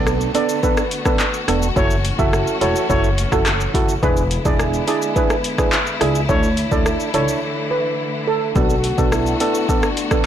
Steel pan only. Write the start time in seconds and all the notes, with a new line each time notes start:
0.35 D5
0.63 B4
1.06 B4
1.77 C#5
2.19 E5
2.61 C#5
2.90 C#5
3.32 A4
4.03 B4
4.45 D5
4.88 D5
5.16 B4
5.59 B4
6.29 C#5
6.72 D5
7.14 C#5
7.71 B4
8.27 A4